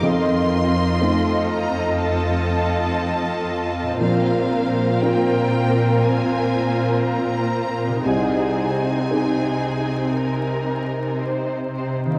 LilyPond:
<<
  \new Staff \with { instrumentName = "Violin section" } { \time 4/4 \key aes \lydian \tempo 4 = 60 c'''4. bes''8 a''2 | f''4 g''4 aes''4 bes''4 | aes''2. r4 | }
  \new Staff \with { instrumentName = "Violin section" } { \time 4/4 \key aes \lydian << { ees''1 | c''1 | c''4 aes'4 bes'4 c''4 | } \\ { bes'4 a'2. | bes'1 | aes'4 r2. | } >> }
  \new Staff \with { instrumentName = "Harp" } { \time 4/4 \key aes \lydian <f c' ees' c''>1 | <bes, c' f' bes'>1 | <c c' ees' aes'>1 | }
  \new Staff \with { instrumentName = "Viola section" } { \time 4/4 \key aes \lydian <c' f'>1 | <c' f'>1 | <c' ees'>1 | }
  \new Staff \with { instrumentName = "Felt piano" } { \time 4/4 \key aes \lydian f,4 <a c' ees'>2. | bes,,4 <c' f' bes'>2. | c,4 <c' ees' aes'>2. | }
  \new Staff \with { instrumentName = "Cello section" } { \clef bass \time 4/4 \key aes \lydian f,1 | bes,1 | c1 | }
>>